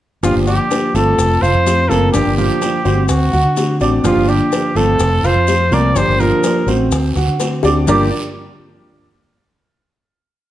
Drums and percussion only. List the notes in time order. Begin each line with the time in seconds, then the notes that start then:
0.23 high bongo, long guiro, maracas
0.47 maracas
0.71 high bongo, short guiro, maracas
0.95 high bongo, short guiro, maracas
1.18 high bongo, long guiro, maracas
1.42 high bongo, maracas
1.66 high bongo, low bongo, short guiro, maracas
1.91 high bongo, short guiro, maracas
2.14 high bongo, long guiro, maracas
2.38 maracas
2.62 high bongo, short guiro, maracas
2.85 high bongo, short guiro, maracas
3.09 high bongo, long guiro, maracas
3.33 high bongo, maracas
3.57 high bongo, low bongo, short guiro, maracas
3.80 high bongo, short guiro, maracas
4.05 high bongo, long guiro, maracas
4.28 maracas
4.52 high bongo, short guiro, maracas
4.76 high bongo, short guiro, maracas
4.99 high bongo, long guiro, maracas
5.24 high bongo, maracas
5.47 high bongo, low bongo, short guiro, maracas
5.72 high bongo, short guiro, maracas
5.96 high bongo, long guiro, maracas
6.20 maracas
6.44 high bongo, short guiro, maracas
6.68 short guiro, maracas
6.92 high bongo, long guiro, maracas
7.16 high bongo, maracas
7.40 high bongo, short guiro, maracas
7.63 low bongo, short guiro, maracas
7.87 low bongo, long guiro, maracas